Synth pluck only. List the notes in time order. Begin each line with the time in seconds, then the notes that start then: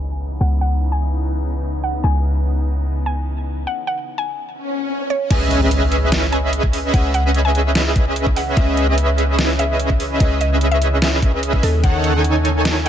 0.41 F#5
0.61 F#5
0.92 G#5
1.84 F#5
2.04 G#5
3.06 G#5
3.67 F#5
3.87 F#5
4.18 G#5
5.10 C#5
5.30 G#5
6.33 G#5
6.94 F#5
7.14 F#5
7.45 G#5
8.37 F#5
8.57 E5
9.59 E5
10.21 D#5
10.41 D#5
10.71 E5
11.63 A4
11.84 F#5